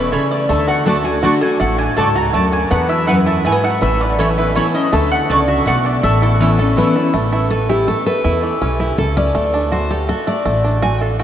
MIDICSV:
0, 0, Header, 1, 7, 480
1, 0, Start_track
1, 0, Key_signature, 3, "major"
1, 0, Tempo, 369004
1, 648, Time_signature, 3, 2, 24, 8
1, 14613, End_track
2, 0, Start_track
2, 0, Title_t, "Mandolin"
2, 0, Program_c, 0, 25
2, 0, Note_on_c, 0, 71, 73
2, 156, Note_off_c, 0, 71, 0
2, 162, Note_on_c, 0, 73, 79
2, 400, Note_off_c, 0, 73, 0
2, 409, Note_on_c, 0, 74, 94
2, 640, Note_off_c, 0, 74, 0
2, 643, Note_on_c, 0, 76, 73
2, 881, Note_off_c, 0, 76, 0
2, 886, Note_on_c, 0, 78, 106
2, 1119, Note_off_c, 0, 78, 0
2, 1124, Note_on_c, 0, 81, 92
2, 1353, Note_off_c, 0, 81, 0
2, 1359, Note_on_c, 0, 80, 76
2, 1595, Note_off_c, 0, 80, 0
2, 1603, Note_on_c, 0, 78, 85
2, 1841, Note_off_c, 0, 78, 0
2, 1849, Note_on_c, 0, 80, 87
2, 2080, Note_off_c, 0, 80, 0
2, 2085, Note_on_c, 0, 78, 81
2, 2319, Note_off_c, 0, 78, 0
2, 2324, Note_on_c, 0, 80, 99
2, 2558, Note_off_c, 0, 80, 0
2, 2568, Note_on_c, 0, 81, 87
2, 2803, Note_off_c, 0, 81, 0
2, 2808, Note_on_c, 0, 82, 106
2, 3039, Note_off_c, 0, 82, 0
2, 3045, Note_on_c, 0, 81, 89
2, 3282, Note_off_c, 0, 81, 0
2, 3289, Note_on_c, 0, 80, 86
2, 3520, Note_off_c, 0, 80, 0
2, 3526, Note_on_c, 0, 78, 79
2, 3758, Note_off_c, 0, 78, 0
2, 3764, Note_on_c, 0, 76, 107
2, 3997, Note_off_c, 0, 76, 0
2, 4002, Note_on_c, 0, 78, 87
2, 4241, Note_off_c, 0, 78, 0
2, 4255, Note_on_c, 0, 81, 92
2, 4484, Note_off_c, 0, 81, 0
2, 4502, Note_on_c, 0, 80, 86
2, 4732, Note_off_c, 0, 80, 0
2, 4740, Note_on_c, 0, 78, 90
2, 4967, Note_off_c, 0, 78, 0
2, 4975, Note_on_c, 0, 76, 85
2, 5208, Note_off_c, 0, 76, 0
2, 5215, Note_on_c, 0, 74, 91
2, 5445, Note_off_c, 0, 74, 0
2, 5453, Note_on_c, 0, 73, 76
2, 5687, Note_off_c, 0, 73, 0
2, 5706, Note_on_c, 0, 71, 82
2, 5924, Note_off_c, 0, 71, 0
2, 5930, Note_on_c, 0, 73, 88
2, 6166, Note_off_c, 0, 73, 0
2, 6175, Note_on_c, 0, 75, 90
2, 6405, Note_off_c, 0, 75, 0
2, 6421, Note_on_c, 0, 76, 92
2, 6649, Note_off_c, 0, 76, 0
2, 6654, Note_on_c, 0, 78, 105
2, 6884, Note_off_c, 0, 78, 0
2, 6909, Note_on_c, 0, 74, 75
2, 7136, Note_off_c, 0, 74, 0
2, 7137, Note_on_c, 0, 76, 82
2, 7366, Note_off_c, 0, 76, 0
2, 7380, Note_on_c, 0, 78, 104
2, 7611, Note_off_c, 0, 78, 0
2, 7625, Note_on_c, 0, 74, 92
2, 7850, Note_off_c, 0, 74, 0
2, 7855, Note_on_c, 0, 76, 95
2, 8088, Note_off_c, 0, 76, 0
2, 8104, Note_on_c, 0, 69, 105
2, 8243, Note_off_c, 0, 69, 0
2, 14613, End_track
3, 0, Start_track
3, 0, Title_t, "Mandolin"
3, 0, Program_c, 1, 25
3, 165, Note_on_c, 1, 61, 84
3, 172, Note_on_c, 1, 69, 90
3, 177, Note_on_c, 1, 76, 99
3, 181, Note_on_c, 1, 83, 85
3, 285, Note_off_c, 1, 61, 0
3, 289, Note_off_c, 1, 69, 0
3, 291, Note_off_c, 1, 76, 0
3, 293, Note_off_c, 1, 83, 0
3, 1123, Note_on_c, 1, 57, 94
3, 1128, Note_on_c, 1, 66, 105
3, 1133, Note_on_c, 1, 74, 109
3, 1137, Note_on_c, 1, 81, 109
3, 1244, Note_off_c, 1, 57, 0
3, 1247, Note_off_c, 1, 66, 0
3, 1249, Note_off_c, 1, 74, 0
3, 1251, Note_off_c, 1, 81, 0
3, 1601, Note_on_c, 1, 57, 87
3, 1609, Note_on_c, 1, 66, 80
3, 1613, Note_on_c, 1, 74, 89
3, 1617, Note_on_c, 1, 81, 90
3, 1723, Note_off_c, 1, 57, 0
3, 1727, Note_off_c, 1, 66, 0
3, 1729, Note_off_c, 1, 74, 0
3, 1732, Note_off_c, 1, 81, 0
3, 2567, Note_on_c, 1, 57, 100
3, 2573, Note_on_c, 1, 66, 100
3, 2577, Note_on_c, 1, 74, 100
3, 2581, Note_on_c, 1, 81, 120
3, 2687, Note_off_c, 1, 57, 0
3, 2690, Note_off_c, 1, 66, 0
3, 2692, Note_off_c, 1, 74, 0
3, 2694, Note_off_c, 1, 81, 0
3, 3048, Note_on_c, 1, 57, 83
3, 3052, Note_on_c, 1, 66, 77
3, 3059, Note_on_c, 1, 74, 91
3, 3062, Note_on_c, 1, 81, 90
3, 3167, Note_off_c, 1, 57, 0
3, 3169, Note_off_c, 1, 66, 0
3, 3173, Note_off_c, 1, 74, 0
3, 3174, Note_off_c, 1, 81, 0
3, 4009, Note_on_c, 1, 59, 92
3, 4016, Note_on_c, 1, 64, 98
3, 4022, Note_on_c, 1, 71, 109
3, 4027, Note_on_c, 1, 80, 102
3, 4128, Note_off_c, 1, 59, 0
3, 4132, Note_off_c, 1, 64, 0
3, 4135, Note_off_c, 1, 71, 0
3, 4137, Note_off_c, 1, 80, 0
3, 4490, Note_on_c, 1, 59, 76
3, 4498, Note_on_c, 1, 64, 84
3, 4500, Note_on_c, 1, 71, 84
3, 4508, Note_on_c, 1, 80, 100
3, 4609, Note_off_c, 1, 59, 0
3, 4613, Note_off_c, 1, 64, 0
3, 4614, Note_off_c, 1, 71, 0
3, 4618, Note_off_c, 1, 80, 0
3, 5450, Note_on_c, 1, 61, 107
3, 5454, Note_on_c, 1, 69, 102
3, 5459, Note_on_c, 1, 76, 121
3, 5466, Note_on_c, 1, 83, 103
3, 5569, Note_off_c, 1, 61, 0
3, 5571, Note_off_c, 1, 69, 0
3, 5574, Note_off_c, 1, 76, 0
3, 5577, Note_off_c, 1, 83, 0
3, 5931, Note_on_c, 1, 61, 79
3, 5940, Note_on_c, 1, 69, 83
3, 5946, Note_on_c, 1, 76, 85
3, 5949, Note_on_c, 1, 83, 96
3, 6050, Note_off_c, 1, 61, 0
3, 6054, Note_off_c, 1, 69, 0
3, 6057, Note_off_c, 1, 76, 0
3, 6058, Note_off_c, 1, 83, 0
3, 6892, Note_on_c, 1, 57, 98
3, 6900, Note_on_c, 1, 66, 90
3, 6904, Note_on_c, 1, 74, 97
3, 6910, Note_on_c, 1, 81, 107
3, 7010, Note_off_c, 1, 57, 0
3, 7014, Note_off_c, 1, 66, 0
3, 7016, Note_off_c, 1, 74, 0
3, 7019, Note_off_c, 1, 81, 0
3, 7370, Note_on_c, 1, 57, 83
3, 7375, Note_on_c, 1, 66, 85
3, 7383, Note_on_c, 1, 74, 88
3, 7389, Note_on_c, 1, 81, 93
3, 7489, Note_off_c, 1, 57, 0
3, 7492, Note_off_c, 1, 66, 0
3, 7496, Note_off_c, 1, 74, 0
3, 7499, Note_off_c, 1, 81, 0
3, 8330, Note_on_c, 1, 61, 99
3, 8336, Note_on_c, 1, 69, 107
3, 8342, Note_on_c, 1, 76, 113
3, 8348, Note_on_c, 1, 83, 113
3, 8449, Note_off_c, 1, 61, 0
3, 8452, Note_off_c, 1, 69, 0
3, 8455, Note_off_c, 1, 76, 0
3, 8458, Note_off_c, 1, 83, 0
3, 8809, Note_on_c, 1, 61, 73
3, 8816, Note_on_c, 1, 69, 78
3, 8822, Note_on_c, 1, 76, 96
3, 8828, Note_on_c, 1, 83, 83
3, 8929, Note_off_c, 1, 61, 0
3, 8932, Note_off_c, 1, 69, 0
3, 8935, Note_off_c, 1, 76, 0
3, 8938, Note_off_c, 1, 83, 0
3, 14613, End_track
4, 0, Start_track
4, 0, Title_t, "Resonator guitar played with a steel bar"
4, 0, Program_c, 2, 25
4, 0, Note_on_c, 2, 71, 101
4, 648, Note_on_c, 2, 69, 94
4, 732, Note_off_c, 2, 71, 0
4, 2550, Note_off_c, 2, 69, 0
4, 2566, Note_on_c, 2, 69, 98
4, 3240, Note_off_c, 2, 69, 0
4, 3525, Note_on_c, 2, 71, 100
4, 4916, Note_off_c, 2, 71, 0
4, 4964, Note_on_c, 2, 71, 85
4, 6409, Note_on_c, 2, 69, 91
4, 6451, Note_off_c, 2, 71, 0
4, 7842, Note_off_c, 2, 69, 0
4, 7858, Note_on_c, 2, 69, 83
4, 8762, Note_off_c, 2, 69, 0
4, 8822, Note_on_c, 2, 71, 87
4, 9263, Note_off_c, 2, 71, 0
4, 14613, End_track
5, 0, Start_track
5, 0, Title_t, "Five-string banjo"
5, 0, Program_c, 3, 105
5, 0, Note_on_c, 3, 57, 76
5, 0, Note_on_c, 3, 61, 54
5, 0, Note_on_c, 3, 69, 52
5, 154, Note_off_c, 3, 69, 0
5, 159, Note_on_c, 3, 69, 66
5, 395, Note_off_c, 3, 57, 0
5, 400, Note_on_c, 3, 57, 59
5, 596, Note_off_c, 3, 61, 0
5, 633, Note_off_c, 3, 57, 0
5, 639, Note_on_c, 3, 57, 70
5, 880, Note_on_c, 3, 66, 59
5, 1109, Note_off_c, 3, 69, 0
5, 1115, Note_on_c, 3, 69, 62
5, 1318, Note_off_c, 3, 57, 0
5, 1359, Note_on_c, 3, 62, 53
5, 1555, Note_off_c, 3, 66, 0
5, 1596, Note_on_c, 3, 66, 64
5, 1796, Note_off_c, 3, 69, 0
5, 1837, Note_on_c, 3, 69, 59
5, 2035, Note_off_c, 3, 62, 0
5, 2078, Note_on_c, 3, 57, 70
5, 2277, Note_off_c, 3, 66, 0
5, 2321, Note_on_c, 3, 62, 58
5, 2514, Note_off_c, 3, 69, 0
5, 2557, Note_on_c, 3, 69, 58
5, 2758, Note_off_c, 3, 57, 0
5, 2800, Note_on_c, 3, 66, 54
5, 2997, Note_off_c, 3, 62, 0
5, 3035, Note_on_c, 3, 57, 58
5, 3238, Note_off_c, 3, 69, 0
5, 3282, Note_on_c, 3, 62, 55
5, 3477, Note_off_c, 3, 66, 0
5, 3515, Note_off_c, 3, 57, 0
5, 3521, Note_on_c, 3, 59, 70
5, 3525, Note_off_c, 3, 62, 0
5, 3758, Note_on_c, 3, 64, 51
5, 3981, Note_off_c, 3, 64, 0
5, 3996, Note_on_c, 3, 64, 57
5, 4199, Note_off_c, 3, 59, 0
5, 4230, Note_off_c, 3, 64, 0
5, 4245, Note_on_c, 3, 64, 54
5, 4485, Note_on_c, 3, 57, 63
5, 4580, Note_off_c, 3, 57, 0
5, 4580, Note_on_c, 3, 59, 65
5, 4715, Note_off_c, 3, 64, 0
5, 4730, Note_on_c, 3, 64, 59
5, 4964, Note_off_c, 3, 59, 0
5, 4969, Note_off_c, 3, 64, 0
5, 4969, Note_on_c, 3, 57, 74
5, 5210, Note_on_c, 3, 61, 52
5, 5447, Note_on_c, 3, 69, 59
5, 5694, Note_on_c, 3, 64, 55
5, 5882, Note_off_c, 3, 61, 0
5, 5921, Note_off_c, 3, 57, 0
5, 5926, Note_on_c, 3, 57, 64
5, 6172, Note_on_c, 3, 61, 56
5, 6364, Note_off_c, 3, 64, 0
5, 6401, Note_off_c, 3, 57, 0
5, 6406, Note_on_c, 3, 57, 71
5, 6410, Note_off_c, 3, 61, 0
5, 6885, Note_off_c, 3, 69, 0
5, 6890, Note_on_c, 3, 69, 58
5, 7127, Note_on_c, 3, 66, 55
5, 7360, Note_off_c, 3, 57, 0
5, 7365, Note_on_c, 3, 57, 60
5, 7607, Note_on_c, 3, 62, 55
5, 7800, Note_off_c, 3, 66, 0
5, 7843, Note_off_c, 3, 57, 0
5, 7848, Note_off_c, 3, 62, 0
5, 7848, Note_on_c, 3, 57, 77
5, 8091, Note_on_c, 3, 64, 57
5, 8317, Note_off_c, 3, 57, 0
5, 8332, Note_on_c, 3, 57, 56
5, 8567, Note_off_c, 3, 69, 0
5, 8572, Note_on_c, 3, 69, 59
5, 8762, Note_off_c, 3, 64, 0
5, 8805, Note_on_c, 3, 64, 64
5, 9006, Note_off_c, 3, 57, 0
5, 9036, Note_off_c, 3, 69, 0
5, 9052, Note_on_c, 3, 69, 58
5, 9283, Note_on_c, 3, 57, 71
5, 9288, Note_off_c, 3, 64, 0
5, 9290, Note_off_c, 3, 69, 0
5, 9529, Note_on_c, 3, 64, 59
5, 9768, Note_on_c, 3, 69, 61
5, 9994, Note_off_c, 3, 64, 0
5, 10009, Note_on_c, 3, 64, 52
5, 10239, Note_off_c, 3, 57, 0
5, 10244, Note_on_c, 3, 57, 69
5, 10484, Note_off_c, 3, 69, 0
5, 10490, Note_on_c, 3, 69, 56
5, 10680, Note_off_c, 3, 64, 0
5, 10725, Note_on_c, 3, 64, 65
5, 10966, Note_on_c, 3, 52, 63
5, 11207, Note_on_c, 3, 61, 58
5, 11401, Note_off_c, 3, 64, 0
5, 11448, Note_on_c, 3, 64, 55
5, 11639, Note_off_c, 3, 52, 0
5, 11682, Note_off_c, 3, 69, 0
5, 11687, Note_on_c, 3, 69, 58
5, 11882, Note_off_c, 3, 61, 0
5, 11926, Note_on_c, 3, 61, 64
5, 12065, Note_off_c, 3, 57, 0
5, 12120, Note_off_c, 3, 64, 0
5, 12159, Note_on_c, 3, 57, 69
5, 12166, Note_off_c, 3, 61, 0
5, 12407, Note_on_c, 3, 62, 59
5, 12641, Note_on_c, 3, 66, 58
5, 12838, Note_off_c, 3, 57, 0
5, 12881, Note_off_c, 3, 69, 0
5, 12886, Note_on_c, 3, 69, 51
5, 13079, Note_off_c, 3, 62, 0
5, 13107, Note_off_c, 3, 66, 0
5, 13123, Note_on_c, 3, 66, 63
5, 13361, Note_on_c, 3, 57, 57
5, 13558, Note_off_c, 3, 69, 0
5, 13584, Note_off_c, 3, 57, 0
5, 13600, Note_on_c, 3, 57, 75
5, 13800, Note_off_c, 3, 66, 0
5, 13846, Note_on_c, 3, 62, 58
5, 14080, Note_on_c, 3, 66, 64
5, 14278, Note_off_c, 3, 57, 0
5, 14326, Note_on_c, 3, 69, 56
5, 14518, Note_off_c, 3, 62, 0
5, 14549, Note_off_c, 3, 66, 0
5, 14564, Note_on_c, 3, 66, 69
5, 14613, Note_off_c, 3, 66, 0
5, 14613, Note_off_c, 3, 69, 0
5, 14613, End_track
6, 0, Start_track
6, 0, Title_t, "Steel-string acoustic guitar"
6, 0, Program_c, 4, 25
6, 0, Note_on_c, 4, 47, 91
6, 144, Note_off_c, 4, 47, 0
6, 162, Note_on_c, 4, 49, 86
6, 621, Note_off_c, 4, 49, 0
6, 642, Note_on_c, 4, 50, 70
6, 1096, Note_off_c, 4, 50, 0
6, 1112, Note_on_c, 4, 50, 76
6, 1124, Note_on_c, 4, 57, 91
6, 1132, Note_on_c, 4, 62, 99
6, 1139, Note_on_c, 4, 66, 105
6, 1339, Note_off_c, 4, 66, 0
6, 1353, Note_off_c, 4, 50, 0
6, 1354, Note_on_c, 4, 66, 60
6, 1359, Note_off_c, 4, 57, 0
6, 1363, Note_off_c, 4, 62, 0
6, 1388, Note_on_c, 4, 62, 42
6, 1591, Note_off_c, 4, 66, 0
6, 1593, Note_on_c, 4, 50, 93
6, 1599, Note_off_c, 4, 62, 0
6, 1606, Note_on_c, 4, 57, 90
6, 1615, Note_on_c, 4, 62, 98
6, 1622, Note_on_c, 4, 66, 98
6, 1824, Note_off_c, 4, 66, 0
6, 1834, Note_off_c, 4, 50, 0
6, 1840, Note_off_c, 4, 57, 0
6, 1840, Note_on_c, 4, 66, 64
6, 1845, Note_off_c, 4, 62, 0
6, 1868, Note_on_c, 4, 62, 47
6, 2073, Note_off_c, 4, 66, 0
6, 2088, Note_off_c, 4, 62, 0
6, 2089, Note_on_c, 4, 45, 81
6, 2564, Note_on_c, 4, 44, 87
6, 3002, Note_off_c, 4, 45, 0
6, 3023, Note_off_c, 4, 44, 0
6, 3047, Note_on_c, 4, 42, 90
6, 3505, Note_off_c, 4, 42, 0
6, 3532, Note_on_c, 4, 40, 76
6, 4009, Note_off_c, 4, 40, 0
6, 4014, Note_on_c, 4, 42, 89
6, 4469, Note_off_c, 4, 42, 0
6, 4493, Note_on_c, 4, 44, 94
6, 4948, Note_off_c, 4, 44, 0
6, 4968, Note_on_c, 4, 45, 74
6, 5444, Note_on_c, 4, 52, 79
6, 5458, Note_on_c, 4, 59, 88
6, 5468, Note_on_c, 4, 61, 89
6, 5475, Note_on_c, 4, 64, 94
6, 5882, Note_off_c, 4, 45, 0
6, 5904, Note_off_c, 4, 52, 0
6, 5911, Note_off_c, 4, 59, 0
6, 5916, Note_off_c, 4, 61, 0
6, 5919, Note_off_c, 4, 64, 0
6, 5921, Note_on_c, 4, 52, 92
6, 5934, Note_on_c, 4, 59, 93
6, 5942, Note_on_c, 4, 61, 97
6, 5952, Note_on_c, 4, 64, 99
6, 6154, Note_off_c, 4, 64, 0
6, 6159, Note_off_c, 4, 52, 0
6, 6166, Note_off_c, 4, 59, 0
6, 6169, Note_off_c, 4, 61, 0
6, 6170, Note_on_c, 4, 64, 70
6, 6201, Note_on_c, 4, 61, 49
6, 6399, Note_off_c, 4, 64, 0
6, 6407, Note_on_c, 4, 50, 75
6, 6415, Note_off_c, 4, 61, 0
6, 6896, Note_on_c, 4, 49, 90
6, 7321, Note_off_c, 4, 50, 0
6, 7350, Note_off_c, 4, 49, 0
6, 7361, Note_on_c, 4, 47, 84
6, 7822, Note_off_c, 4, 47, 0
6, 7850, Note_on_c, 4, 45, 82
6, 8327, Note_on_c, 4, 52, 80
6, 8335, Note_on_c, 4, 59, 91
6, 8344, Note_on_c, 4, 61, 94
6, 8355, Note_on_c, 4, 64, 94
6, 8559, Note_off_c, 4, 64, 0
6, 8562, Note_off_c, 4, 52, 0
6, 8566, Note_off_c, 4, 59, 0
6, 8571, Note_off_c, 4, 61, 0
6, 8575, Note_on_c, 4, 64, 57
6, 8601, Note_on_c, 4, 61, 48
6, 8763, Note_off_c, 4, 45, 0
6, 8796, Note_on_c, 4, 52, 81
6, 8802, Note_off_c, 4, 64, 0
6, 8805, Note_off_c, 4, 61, 0
6, 8809, Note_on_c, 4, 59, 91
6, 8820, Note_on_c, 4, 61, 83
6, 8829, Note_on_c, 4, 64, 90
6, 9029, Note_off_c, 4, 64, 0
6, 9036, Note_off_c, 4, 52, 0
6, 9043, Note_off_c, 4, 59, 0
6, 9045, Note_on_c, 4, 64, 65
6, 9048, Note_off_c, 4, 61, 0
6, 9074, Note_on_c, 4, 61, 51
6, 9277, Note_off_c, 4, 64, 0
6, 9291, Note_off_c, 4, 61, 0
6, 9761, Note_on_c, 4, 71, 83
6, 10001, Note_off_c, 4, 71, 0
6, 10009, Note_on_c, 4, 67, 93
6, 10241, Note_off_c, 4, 67, 0
6, 10248, Note_on_c, 4, 69, 86
6, 10484, Note_off_c, 4, 69, 0
6, 10490, Note_on_c, 4, 71, 93
6, 10938, Note_off_c, 4, 71, 0
6, 11209, Note_on_c, 4, 71, 79
6, 11442, Note_on_c, 4, 67, 75
6, 11445, Note_off_c, 4, 71, 0
6, 11677, Note_off_c, 4, 67, 0
6, 11683, Note_on_c, 4, 69, 90
6, 11921, Note_off_c, 4, 69, 0
6, 11929, Note_on_c, 4, 74, 120
6, 12376, Note_off_c, 4, 74, 0
6, 12645, Note_on_c, 4, 72, 94
6, 12882, Note_off_c, 4, 72, 0
6, 12885, Note_on_c, 4, 67, 92
6, 13118, Note_off_c, 4, 67, 0
6, 13127, Note_on_c, 4, 69, 86
6, 13363, Note_off_c, 4, 69, 0
6, 13367, Note_on_c, 4, 74, 90
6, 13815, Note_off_c, 4, 74, 0
6, 14085, Note_on_c, 4, 80, 90
6, 14328, Note_off_c, 4, 80, 0
6, 14328, Note_on_c, 4, 77, 84
6, 14561, Note_off_c, 4, 77, 0
6, 14561, Note_on_c, 4, 78, 96
6, 14613, Note_off_c, 4, 78, 0
6, 14613, End_track
7, 0, Start_track
7, 0, Title_t, "Upright bass"
7, 0, Program_c, 5, 32
7, 0, Note_on_c, 5, 28, 93
7, 194, Note_off_c, 5, 28, 0
7, 643, Note_on_c, 5, 38, 95
7, 1633, Note_off_c, 5, 38, 0
7, 2090, Note_on_c, 5, 33, 93
7, 2419, Note_off_c, 5, 33, 0
7, 2567, Note_on_c, 5, 37, 76
7, 2976, Note_off_c, 5, 37, 0
7, 3046, Note_on_c, 5, 38, 78
7, 3456, Note_off_c, 5, 38, 0
7, 3529, Note_on_c, 5, 40, 103
7, 4518, Note_off_c, 5, 40, 0
7, 4972, Note_on_c, 5, 33, 103
7, 5959, Note_off_c, 5, 33, 0
7, 6414, Note_on_c, 5, 38, 108
7, 6742, Note_off_c, 5, 38, 0
7, 6891, Note_on_c, 5, 37, 85
7, 7299, Note_off_c, 5, 37, 0
7, 7371, Note_on_c, 5, 35, 90
7, 7779, Note_off_c, 5, 35, 0
7, 7850, Note_on_c, 5, 33, 94
7, 8838, Note_off_c, 5, 33, 0
7, 9291, Note_on_c, 5, 33, 91
7, 10278, Note_off_c, 5, 33, 0
7, 10728, Note_on_c, 5, 40, 98
7, 11058, Note_off_c, 5, 40, 0
7, 11207, Note_on_c, 5, 35, 78
7, 11616, Note_off_c, 5, 35, 0
7, 11684, Note_on_c, 5, 37, 92
7, 12094, Note_off_c, 5, 37, 0
7, 12163, Note_on_c, 5, 38, 92
7, 13153, Note_off_c, 5, 38, 0
7, 13600, Note_on_c, 5, 33, 88
7, 14591, Note_off_c, 5, 33, 0
7, 14613, End_track
0, 0, End_of_file